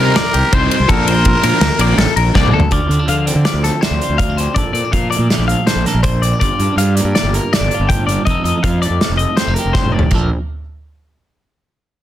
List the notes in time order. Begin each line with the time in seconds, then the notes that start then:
Already playing: C4 D#4
0.00 C3 G3 A#4
0.16 D5, snare, ride
0.33 C2 G4, ride
0.52 C2 C3 G3 C4 D#4 C5, kick, ride
0.71 ride
0.80 C2
0.88 A#1 D3 F3 A#3 D4 A4 A#4, kick, ride
1.08 C5, ride
1.25 kick, ride
1.43 A#2 D3 F3 A#3 D4 A#4, ride
1.61 D2, snare, ride
1.79 A#1 D3 F3 A#3 D4 D5, ride
1.97 A1 A4, snare, ride
2.16 A#1 A#4, ride
2.34 C2 D3 F3 A#3 D4 D5, kick, snare
2.48 mid tom
2.53 D2 A4
2.60 floor tom
2.71 D2 D3 F4 D5, kick, closed hi-hat
2.89 D3 C4, closed hi-hat
2.99 D4
3.08 D3 F3 F5, closed hi-hat
3.26 C4 D5, closed hi-hat
3.35 D3
3.45 F3 D5, snare, closed hi-hat
3.54 D2
3.64 C4 A4, snare, closed hi-hat
3.81 D4 C5, snare, closed hi-hat
3.91 D2
4.01 F4, closed hi-hat
4.09 D2
4.18 D3 F4 F5, kick, closed hi-hat
4.30 G4
4.37 D4 C5, closed hi-hat
4.55 A#1 A#2 A4 D5, kick, closed hi-hat
4.73 A#2 C4 D5, closed hi-hat
4.85 D4
4.92 A#2 F3 F5, kick, closed hi-hat
5.11 D5, closed hi-hat
5.15 A3
5.19 A#2
5.30 F3, snare, closed hi-hat
5.38 A#1
5.48 A3 F5, closed hi-hat
5.67 D4 C5, snare, closed hi-hat
5.76 A#1
5.86 A4 A#4, snare, closed hi-hat
5.94 A#1
6.03 A#2 C5, kick, closed hi-hat
6.22 C4 D5, closed hi-hat
6.33 D4
6.40 G1 G2 F4 D5, kick, closed hi-hat
6.59 G2 D4, closed hi-hat
6.76 G2 G3 F5, closed hi-hat
6.95 D5, closed hi-hat
7.00 A#3
7.04 G2
7.15 G3 D5, snare, closed hi-hat
7.23 G1
7.34 A#3 A#4, closed hi-hat
7.53 D4 D5, snare, closed hi-hat
7.61 G1
7.71 F4, closed hi-hat
7.79 G1
7.89 A2 G5, kick, closed hi-hat
8.07 G2 D5, closed hi-hat
8.25 F1 F2 D#5, kick, closed hi-hat
8.29 F3 A3 D#4 A4
8.44 F2 D#4 D#5, closed hi-hat
8.63 F2 F3 F5, kick, closed hi-hat
8.82 A3 D5, closed hi-hat
8.90 F2
9.01 F3, snare, closed hi-hat
9.09 F1
9.17 D#5, closed hi-hat
9.22 A3
9.37 C4 C5, snare, closed hi-hat
9.47 F1 D#4
9.54 A#4, closed hi-hat
9.59 G4
9.65 F1
9.73 G2 C5, kick, snare
9.86 mid tom
9.92 A2 D5
9.99 floor tom
10.10 A#1 A#2 F3 A#4, kick, crash
10.15 A3 D4 A4